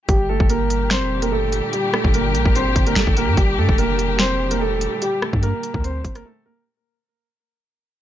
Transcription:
0.09 808-style bass G1, string section A#2 D3 G3 G4, grand piano G3 G4, kick, closed hi-hat
0.29 grand piano A3 A4
0.40 808-style bass G1, kick
0.50 grand piano A#3 A#4, closed hi-hat
0.70 closed hi-hat
0.90 grand piano C4 C5, finger snap, snare, closed hi-hat
1.02 808-style bass F1
1.22 grand piano A#3 A#4, closed hi-hat
1.32 808-style bass G1, grand piano A3 A4
1.52 closed hi-hat
1.73 grand piano G3 G4, closed hi-hat
1.94 grand piano A3 A4, cross-stick
2.04 808-style bass G1, kick
2.14 grand piano A#3 A#4, closed hi-hat
2.35 808-style bass A#1, closed hi-hat
2.46 808-style bass G1, kick
2.55 grand piano C4 C5, closed hi-hat
2.76 808-style bass G1, kick, closed hi-hat
2.87 grand piano A#3 A#4, closed hi-hat
2.95 808-style bass G1, grand piano A3 A4, finger snap, snare
3.07 808-style bass G1, kick
3.17 grand piano A#3 A#4, closed hi-hat
3.28 808-style bass G2
3.37 808-style bass G1, string section G3, grand piano G3 G4, kick, closed hi-hat
3.58 808-style bass G2, grand piano A3 A4
3.69 808-style bass F1, kick
3.78 grand piano A#3 A#4, closed hi-hat
3.99 closed hi-hat
4.19 grand piano C4 C5, finger snap, snare, closed hi-hat
4.51 grand piano A#3 A#4, closed hi-hat
4.61 grand piano A3 A4
4.81 closed hi-hat
5.02 grand piano G3 G4, closed hi-hat
5.22 grand piano A3 A4, cross-stick
5.33 808-style bass G2, kick
5.43 grand piano A#3 A#4, closed hi-hat
5.63 closed hi-hat
5.74 808-style bass D2, kick
5.84 grand piano C4 C5, closed hi-hat
6.05 808-style bass G1, kick, closed hi-hat
6.15 grand piano A#3 A#4, cross-stick, closed hi-hat
6.25 grand piano A3 A4
6.46 grand piano A#3 A#4

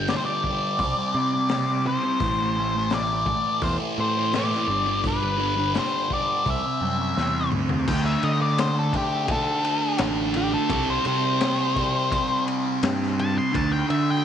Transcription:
Already playing: picked electric bass G1, distorted electric guitar D3 G3, lead electric guitar G5
0.08 distorted electric guitar G2, lead electric guitar D5, snare, open hi-hat
0.13 distorted electric guitar D3 G3, lead electric guitar C5
0.25 lead electric guitar D5
0.44 kick
0.48 distorted electric guitar G2 D3 G3
0.79 picked electric bass C2, distorted electric guitar C3, kick, open hi-hat
0.83 distorted electric guitar G3 C4
0.98 distorted electric guitar G3 C4
1.14 picked electric bass C3, distorted electric guitar C3 G3
1.19 distorted electric guitar C4
1.35 distorted electric guitar G3 C4
1.49 distorted electric guitar C3 G3, snare, open hi-hat
1.54 distorted electric guitar C4
1.87 distorted electric guitar C3 G3 C4, lead electric guitar C5
2.04 distorted electric guitar G3 C4
2.20 picked electric bass A1, distorted electric guitar A2 E3 A3, kick, open hi-hat
2.39 distorted electric guitar E3 A3
2.57 distorted electric guitar A2 E3 A3
2.75 distorted electric guitar E3 A3
2.90 distorted electric guitar A2 E3 A3, snare, open hi-hat
2.94 lead electric guitar D5
3.26 distorted electric guitar A2 E3 A3, kick
3.62 picked electric bass E2, lead electric guitar C5, kick, open hi-hat
3.80 distorted electric guitar E3 A3
3.98 distorted electric guitar A2 E3 A3, picked electric bass A2, lead electric guitar C5
4.16 distorted electric guitar E3 A3
4.33 distorted electric guitar A2 E3 A3, lead electric guitar D5, snare, open hi-hat
4.52 snare
4.67 picked electric bass G1, distorted electric guitar G2 D3 G3
4.85 distorted electric guitar D3 G3
5.04 distorted electric guitar G2 D3 G3, lead electric guitar B4, kick, open hi-hat
5.21 distorted electric guitar D3 G3
5.38 distorted electric guitar G2 D3 G3
5.56 distorted electric guitar D3 G3
5.74 distorted electric guitar G2 D3 G3, snare, open hi-hat
5.79 lead electric guitar C5
6.09 distorted electric guitar G2 D3 G3, kick
6.14 lead electric guitar D5
6.45 picked electric bass C2, distorted electric guitar C3 G3 C4, kick, open hi-hat
6.50 lead electric guitar E5
6.63 distorted electric guitar G3 C4
6.81 picked electric bass F#2, distorted electric guitar C3 G3 C4
6.98 distorted electric guitar G3 C4
7.17 picked electric bass E2, distorted electric guitar C3 G3 C4, snare
7.52 picked electric bass D2, distorted electric guitar C3 G3 C4, mid tom
7.69 distorted electric guitar G3 C4, floor tom
7.88 picked electric bass D2, distorted electric guitar D3 A3, lead electric guitar G5, kick, crash
7.92 distorted electric guitar D4
8.06 lead electric guitar E5
8.23 picked electric bass D3, lead electric guitar D#5, ride
8.42 lead electric guitar D5
8.58 lead electric guitar C5, snare, ride
8.79 lead electric guitar A4
8.93 distorted electric guitar D3 A3 D4, lead electric guitar G4, kick, ride
9.28 lead electric guitar A4, kick, ride
9.65 ride
9.98 picked electric bass A1, snare, ride
10.34 lead electric guitar G4, ride
10.54 lead electric guitar A4
10.70 picked electric bass C2, distorted electric guitar C3 G3 C4, kick, ride
10.90 lead electric guitar C5
11.05 picked electric bass C3, lead electric guitar C5, ride
11.41 snare, ride
11.76 distorted electric guitar C3 G3 C4, kick, ride
12.12 kick, ride
12.48 ride
12.83 picked electric bass G2, snare, ride
13.03 snare
13.19 lead electric guitar A5, ride
13.38 lead electric guitar C6
13.53 picked electric bass D2, distorted electric guitar D3 A3 D4, lead electric guitar A5, kick, ride
13.73 lead electric guitar G5
13.90 picked electric bass D3, lead electric guitar E5, ride
14.11 lead electric guitar G5

